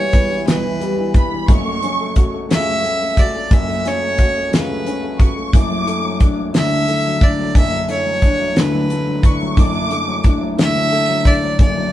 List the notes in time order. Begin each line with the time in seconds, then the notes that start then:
Already playing: E1 B1 E2 B2 E3 G3 B3 E4 C#5
0.12 E3 G3 B3 E4, kick, closed hi-hat
0.30 E3
0.46 B1 E2 B2 E3 G3 B3 E4 B4, snare, closed hi-hat
0.63 E3
0.80 E3 G3 B3 E4, closed hi-hat
0.97 E3
1.14 E3 G3 B3 E4 B5, kick, closed hi-hat
1.30 E3
1.47 F#1 F#2 C#3 F#3 A3 C#4 F#4 C#6, kick, closed hi-hat
1.65 A3
1.81 F#3 A3 C#4 F#4, closed hi-hat
2.00 A3
2.15 F#3 A3 C#4 F#4, kick, closed hi-hat
2.34 A3
2.49 C#2 F#2 C#3 F#3 A3 C#4 F#4 E5, snare, closed hi-hat
2.67 A3
2.83 F#3 A3 C#4 F#4, closed hi-hat
3.01 A3
3.17 F#3 A3 F#4 D5, kick, closed hi-hat
3.35 A3
3.50 F#1 F#2 C#3 F#3 A3 C#4 F#4 E5, kick, closed hi-hat
3.68 A3
3.84 F#3 A3 C#4 F#4 C#5, snare, closed hi-hat
4.02 A3
4.17 F#3 A3 C#4 F#4, kick, closed hi-hat
4.37 A3
4.51 C#2 F#2 C#3 F#3 A3 C#4 F#4, snare, closed hi-hat
4.56 B4
4.70 A3
4.85 F#3 A3 C#4 F#4, closed hi-hat
5.03 A3
5.19 F#3 A3 C#4 F#4 C#6, kick, closed hi-hat
5.37 A3
5.52 F#1 F#2 F#3 A3 D4 E4 D6, kick, closed hi-hat
5.70 F#3
5.85 A3 D4 E4, closed hi-hat
6.04 F#3
6.19 F#3 A3 D4 E4, kick, closed hi-hat
6.39 F#3
6.53 D2 D3 F#3 A3 D4 E4 E5, snare, closed hi-hat
6.72 F#3
6.87 F#3 A3 D4 E4, closed hi-hat
7.07 F#3
7.21 A3 D4 E4 D5, kick, closed hi-hat
7.38 F#3
7.54 F#1 F#2 F#3 A3 D4 E4 E5, kick, closed hi-hat
7.73 F#3
7.88 A3 D4 E4 C#5, closed hi-hat
8.05 F#3
8.22 F#3 A3 D4 E4, kick, closed hi-hat
8.40 F#3
8.55 D2 D3 F#3 A3 D4 E4, snare, closed hi-hat
8.59 B4
8.74 F#3
8.89 F#3 A3 D4 E4, closed hi-hat
9.08 F#3
9.22 A3 D4 E4 C#6, kick, closed hi-hat
9.42 F#3
9.56 F#1 F#2 F#3 A3 D4 E4 D6, kick, closed hi-hat
9.75 F#3
9.90 A3 D4 E4, closed hi-hat
10.08 F#3
10.23 F#3 A3 D4 E4, kick, closed hi-hat
10.41 F#3
10.57 D2 D3 F#3 A3 D4 E4, snare, closed hi-hat
10.61 E5
10.75 F#3
10.91 F#3 A3 D4 E4, closed hi-hat
11.08 F#3
11.25 A3 D4 E4 D5, kick, closed hi-hat
11.43 F#3
11.59 F#1 F#2 F#3 A3 D4 E4 D5, kick, closed hi-hat
11.76 F#3